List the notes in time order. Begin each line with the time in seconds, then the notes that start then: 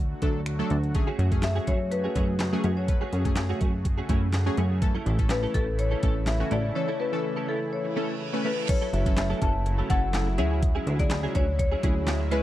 Already playing: D2 D3 F#3 A3 F#4 D5
0.22 D2 F#3 A3 D4 A4, kick, closed hi-hat
0.46 finger snap, closed hi-hat
0.59 F#3 A3 D4 A4
0.70 D2, closed hi-hat
0.83 closed hi-hat
0.94 C#3 F#3 A3 C#4 G#4, muted clean electric guitar stroke, kick, closed hi-hat
1.07 A3 C#4 F#4 G#4
1.18 F#2 A3 C#4 F#4 G#4, closed hi-hat
1.31 F#3 A3 C#4 G#4, muted clean electric guitar stroke, kick, closed hi-hat
1.42 E5, muted clean electric guitar stroke, snare, clap, closed hi-hat
1.55 A3 C#4 F#4 G#4
1.67 F#2 A3 C#4 F#4 G#4 C#5, kick, closed hi-hat
1.80 muted clean electric guitar stroke
1.91 B4, muted clean electric guitar stroke, closed hi-hat
2.04 A3 C#4 F#4 G#4
2.15 F#2 F#3 A3 C#4 F#4 G#4, kick, closed hi-hat
2.28 muted clean electric guitar stroke
2.39 muted clean electric guitar stroke, snare, clap, closed hi-hat
2.53 F#3 A3 C#4 G#4, muted clean electric guitar stroke
2.64 F#2 A3 C#4 F#4 G#4, closed hi-hat
2.77 A3 C#4 F#4 G#4 C#5
2.88 F#3 A3 C#4 B4, muted clean electric guitar stroke, kick, closed hi-hat
3.01 A3 C#4 F#4 G#4
3.12 F#2 A3 C#4 F#4 G#4 A4, closed hi-hat
3.25 F#3 A3 C#4 G#4, muted clean electric guitar stroke, kick, closed hi-hat
3.35 muted clean electric guitar stroke, snare, clap, closed hi-hat
3.49 A3 C#4 F#4 G#4
3.61 F#2 A3 C#4 F#4 G#4, kick, closed hi-hat
3.74 muted clean electric guitar stroke
3.85 muted clean electric guitar stroke, kick, closed hi-hat
3.98 A3 C#4 F#4 G#4
4.09 F#2 F#3 A3 C#4 E4 F#4 G#4, kick, closed hi-hat
4.22 muted clean electric guitar stroke
4.33 muted clean electric guitar stroke, snare, clap, closed hi-hat
4.46 F#3 A3 C#4 G#4, muted clean electric guitar stroke
4.57 F#2 A3 C#4 F#4 G#4, closed hi-hat
4.70 A3 C#4 F#4 G#4
4.82 E3 A3 C#4 E4 A4, muted clean electric guitar stroke, kick, closed hi-hat
4.95 A3 C#4 E4 A4
5.06 A1 A3 C#4 E4 G#4 A4, closed hi-hat
5.19 E3 A3 C#4 A4, muted clean electric guitar stroke, kick, closed hi-hat
5.29 B4, muted clean electric guitar stroke, snare, clap, closed hi-hat
5.43 A3 C#4 E4 A4
5.54 A1 A3 C#4 E4 A4, kick, closed hi-hat
5.67 muted clean electric guitar stroke
5.78 C#5, muted clean electric guitar stroke, closed hi-hat
5.91 A3 C#4 E4 A4
6.02 A1 E3 A3 C#4 E4 A4, kick, closed hi-hat
6.16 muted clean electric guitar stroke
6.26 E5, muted clean electric guitar stroke, snare, clap, closed hi-hat
6.40 E3 A3 C#4 F#4, muted clean electric guitar stroke
6.51 A1 A3 C#4 E4 A4 D5, closed hi-hat
6.64 A3 C#4 E4 A4
6.75 E3 A3 C#4 A4 C#5, muted clean electric guitar stroke
6.88 A3 C#4 E4 A4
6.99 A3 C#4 E4 F#4 A4 B4
7.12 E3 A3 C#4 A4, muted clean electric guitar stroke
7.24 muted clean electric guitar stroke
7.36 A3 C#4 E4 A4
7.48 A3 C#4 E4 A4
7.61 muted clean electric guitar stroke
7.72 C#5, reverse cymbal
7.85 muted clean electric guitar stroke
7.96 E3 A3 C#4 E4 A4
8.09 muted clean electric guitar stroke
8.20 muted clean electric guitar stroke
8.33 E3 A3 C#4 B4, muted clean electric guitar stroke
8.45 A3 C#4 E4 A4 B4
8.57 A3 C#4 E4 A4
8.69 C#3 F#3 A3 C#4 E4 A4 C#5, kick, closed hi-hat, crash
8.81 F#3 C#4 E4 A4
8.93 F#1 F#3 C#4 E4 A4 E5, closed hi-hat
9.06 F#3 C#4 E4 A4, muted clean electric guitar stroke, kick, closed hi-hat
9.17 E5, muted clean electric guitar stroke, snare, clap, closed hi-hat
9.30 F#3 C#4 E4 A4
9.41 F#1 F#3 C#4 E4 A4 A5, kick, closed hi-hat
9.54 muted clean electric guitar stroke
9.66 muted clean electric guitar stroke, closed hi-hat
9.78 F#3 C#4 E4 A4
9.90 F#1 F#3 C#4 E4 A4 F#5, kick, closed hi-hat
10.03 muted clean electric guitar stroke
10.13 snare, clap, closed hi-hat
10.27 muted clean electric guitar stroke
10.38 D2 F#3 G#3 C#4 E4 G#4 E5, closed hi-hat
10.51 F#3 C#4 E4 G#4
10.62 muted clean electric guitar stroke, kick, closed hi-hat
10.75 F#3 C#4 E4 G#4
10.86 D2 F#3 C#4 E4 G#4, closed hi-hat
10.99 C#3 F#3 E4 G#4 D5, muted clean electric guitar stroke, kick, closed hi-hat
11.10 muted clean electric guitar stroke, snare, clap, closed hi-hat
11.23 F#3 C#4 E4 G#4
11.35 D2 F#3 C#4 E4 G#4 C#5, kick, closed hi-hat
11.59 C#5, muted clean electric guitar stroke, kick, closed hi-hat
11.71 F#3 C#4 E4 G#4
11.83 D2 F#3 C#4 E4 G#4, kick, closed hi-hat
11.96 muted clean electric guitar stroke
12.07 muted clean electric guitar stroke, snare, clap, closed hi-hat
12.20 muted clean electric guitar stroke
12.31 C#2 G#3 B3 C#4 E4 G#4 B4, closed hi-hat